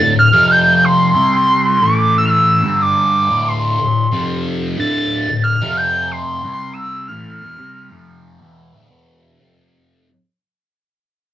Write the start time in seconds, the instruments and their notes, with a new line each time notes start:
Already playing: analog synth lead A6
0.00 distorted electric guitar D2 A2
0.19 analog synth lead F6
0.32 distorted electric guitar F2 C3 F3
0.51 analog synth lead G6
0.84 analog synth lead C6
1.14 distorted electric guitar C3 G3 C4
1.81 distorted electric guitar A2 E3 A3, analog synth lead D6
2.18 analog synth lead E6
2.25 analog synth lead E6 F6
2.63 distorted electric guitar G2 D3 G3
2.82 analog synth lead D6
3.29 distorted electric guitar D2 A2 D3
3.48 analog synth lead C6
3.79 distorted electric guitar D2 A2
4.12 distorted electric guitar F2 C3 F3
4.77 distorted electric guitar D2 A2 D3, analog synth lead A6
5.28 distorted electric guitar D2 A2
5.44 analog synth lead F6
5.61 distorted electric guitar F2 C3 F3
5.77 analog synth lead G6
6.11 analog synth lead C6
6.44 distorted electric guitar C3 G3 C4
6.53 analog synth lead C6
6.73 analog synth lead E6
7.08 distorted electric guitar A2 E3 A3, analog synth lead F6
7.41 distorted electric guitar E2 B2
7.58 distorted electric guitar C3 G3 C4
7.91 distorted electric guitar F2 C3 F3
8.40 distorted electric guitar E2 B2 E3
8.74 distorted electric guitar D2 A2
8.90 distorted electric guitar E2 B2 E3
9.40 distorted electric guitar F2 C3 F3